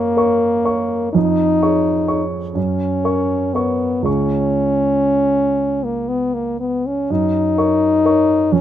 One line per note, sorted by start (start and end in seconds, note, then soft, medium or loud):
0.00 1.18 F#2 soft
0.00 1.12 A#3 medium
0.00 0.17 A#4 soft
0.00 0.17 C#5 soft
0.00 0.18 C#6 soft
0.17 0.62 A#4 soft
0.17 0.62 C#5 soft
0.17 0.63 C#6 soft
0.64 1.10 A#4 soft
0.64 1.11 C#5 soft
0.64 1.11 C#6 soft
1.13 1.60 F2 soft
1.13 2.24 D#4 medium
1.63 2.05 G#4 soft
1.63 2.05 C#5 soft
1.63 2.05 C#6 soft
2.08 2.52 G#4 soft
2.08 2.52 C#5 soft
2.08 2.52 C#6 soft
2.55 3.03 F#2 soft
2.55 3.55 C#4 medium
3.04 3.51 A#4 soft
3.04 3.51 C#5 soft
3.04 3.51 C#6 soft
3.54 4.05 B3 medium
3.54 4.03 A#4 soft
3.54 4.03 C#5 soft
3.54 4.03 C#6 soft
4.02 7.03 C#2 soft
4.02 5.85 C#4 medium
4.02 7.04 G#4 soft
4.02 7.04 C#5 soft
4.02 7.05 C#6 soft
5.84 6.10 A#3 soft
6.09 6.36 B3 medium
6.34 6.59 A#3 soft
6.60 6.88 B3 medium
6.86 7.13 C#4 medium
7.10 7.56 F#2 soft
7.10 8.54 D#4 medium
7.58 8.01 A#4 soft
7.58 8.02 C#5 soft
7.58 8.01 C#6 soft
8.05 8.48 A#4 soft
8.05 8.48 C#5 soft
8.05 8.49 C#6 soft
8.52 8.61 F2 soft
8.52 8.61 C#4 medium